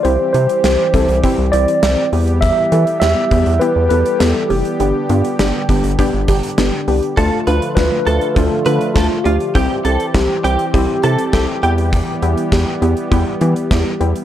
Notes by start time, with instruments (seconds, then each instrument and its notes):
0.03 analog synth bass C2, analog synth pad E3 G3 C4 G4, synth pluck C4 E4 G4, tine electric piano C5, closed hi-hat
0.33 analog synth bass C3, synth pluck C4 E4 G4, tine electric piano C5, closed hi-hat
0.49 closed hi-hat
0.64 analog synth bass C2, synth pluck C4 E4 G4, snare, closed hi-hat
0.94 analog synth bass C2, synth pluck C4 E4 A4, kick, closed hi-hat
1.09 analog synth bass C2, closed hi-hat
1.24 synth pluck C4 E4 G4, kick, closed hi-hat
1.38 analog synth bass C2
1.52 analog synth bass C2, synth pluck C4 E4 G4, tine electric piano D5, closed hi-hat
1.68 closed hi-hat
1.83 analog synth bass C2, synth pluck C4 E4 G4, snare, closed hi-hat
2.13 analog synth bass E2, analog synth pad E3 B3 G4, synth pluck B3 E4 G4, open hi-hat
2.28 closed hi-hat
2.41 tine electric piano E5, kick, closed hi-hat
2.72 analog synth bass E3, synth pluck B3 E4 A4, closed hi-hat
2.87 closed hi-hat
3.00 analog synth bass E2, synth pluck B3 E4 G4, tine electric piano E5, snare, closed hi-hat
3.31 analog synth bass E2, synth pluck B3 E4 G4, kick, closed hi-hat
3.46 analog synth bass E2, closed hi-hat
3.60 synth pluck B3 E4 G4, tine electric piano B4, closed hi-hat
3.76 analog synth bass E2
3.89 analog synth bass E2, synth pluck B3 E4 A4, tine electric piano B4, closed hi-hat
4.06 closed hi-hat
4.19 analog synth bass E2, synth pluck B3 E4 G4, tine electric piano A4, snare, closed hi-hat
4.49 analog synth bass F1, synth pluck B3 E4 G4, tine electric piano G4, open hi-hat
4.65 closed hi-hat
4.80 analog synth bass G1, analog synth pad D3, synth pluck B3 D4 G4, closed hi-hat
5.09 analog synth bass G2, synth pluck B3 D4 F4, closed hi-hat
5.25 closed hi-hat
5.39 analog synth bass G1, synth pluck B3 D4 G4, snare, closed hi-hat
5.69 analog synth bass G1, synth pluck B3 D4 G4, kick, closed hi-hat
5.84 analog synth bass G1, closed hi-hat
5.99 synth pluck B3 D4 G4, kick, closed hi-hat
6.14 analog synth bass G1
6.28 analog synth bass G1, synth pluck B3 D4 G4, kick, closed hi-hat
6.43 closed hi-hat
6.58 analog synth bass G1, synth pluck B3 D4 G4, snare, closed hi-hat
6.88 analog synth bass C2, synth pluck B3 D4 G4, open hi-hat
7.03 closed hi-hat
7.17 analog synth bass D2, analog synth pad D3 F3 A3 F4, synth pluck A3 D4 F4, clean electric guitar A4, kick, closed hi-hat
7.47 analog synth bass D2, synth pluck A3 D4 F4, clean electric guitar B4, closed hi-hat
7.62 closed hi-hat
7.75 analog synth bass D2, synth pluck A3 D4 F4, tine electric piano B4, kick, snare, closed hi-hat
8.07 analog synth bass D2, synth pluck A3 D4 F4, clean electric guitar A4, closed hi-hat
8.21 closed hi-hat
8.35 analog synth bass D2, synth pluck A3 D4 F4, tine electric piano A4, kick, closed hi-hat
8.66 analog synth bass D3, synth pluck A3 D4 F4, clean electric guitar B4, closed hi-hat
8.81 closed hi-hat
8.94 analog synth bass D2, synth pluck A3 D4 F4, tine electric piano F4, clean electric guitar A4, kick, snare, closed hi-hat
9.24 analog synth bass D2, synth pluck A3 D4 F4, clean electric guitar F4, tine electric piano G4, closed hi-hat
9.40 closed hi-hat
9.55 analog synth bass C2, analog synth pad E3 G3 C4 G4, synth pluck C4 E4 G4, clean electric guitar G4, kick, closed hi-hat
9.85 analog synth bass C2, synth pluck C4 E4 G4, clean electric guitar A4, closed hi-hat
10.00 closed hi-hat
10.14 analog synth bass C2, synth pluck C4 E4 G4, kick, snare, closed hi-hat
10.44 analog synth bass C2, synth pluck C4 E4 G4, clean electric guitar G4, closed hi-hat
10.59 closed hi-hat
10.74 analog synth bass C2, synth pluck C4 E4 G4, kick, closed hi-hat
11.03 analog synth bass C3, synth pluck C4 E4 G4, clean electric guitar A4, closed hi-hat
11.18 closed hi-hat
11.33 analog synth bass C2, synth pluck C4 E4 A4, clean electric guitar G4, kick, snare, closed hi-hat
11.63 analog synth bass E2, synth pluck B3 E4 G4, analog synth pad B3, clean electric guitar G4, closed hi-hat
11.78 closed hi-hat
11.93 kick, closed hi-hat
12.22 analog synth bass E2, synth pluck B3 E4 G4, closed hi-hat
12.37 closed hi-hat
12.52 analog synth bass E2, synth pluck B3 E4 G4, kick, snare, closed hi-hat
12.82 analog synth bass E2, synth pluck B3 E4 G4, closed hi-hat
12.97 closed hi-hat
13.11 analog synth bass E2, synth pluck B3 E4 G4, kick, closed hi-hat
13.41 analog synth bass E3, synth pluck B3 E4 G4, closed hi-hat
13.56 closed hi-hat
13.71 analog synth bass E2, synth pluck B3 E4 G4, kick, snare, closed hi-hat
14.00 analog synth bass E2, synth pluck B3 E4 G4, closed hi-hat
14.16 closed hi-hat